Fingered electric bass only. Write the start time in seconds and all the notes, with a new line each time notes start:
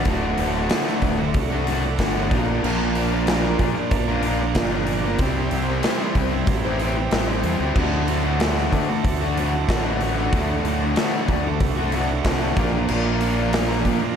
0.06 D1
0.39 D1
1.02 D1
1.34 C2
1.99 G1
2.31 A#1
2.63 A#1
3.59 A#2
3.92 A#1
4.55 G1
5.19 C2
5.52 C2
6.15 C2
6.47 A1
7.12 A1
7.44 E2
7.60 D2
7.76 D2
8.72 D3
9.04 D2
9.68 A1
10.33 D2
10.64 D2
11.28 D2
11.61 C2
12.25 C2
12.57 A#1
12.90 A#1
13.85 A#2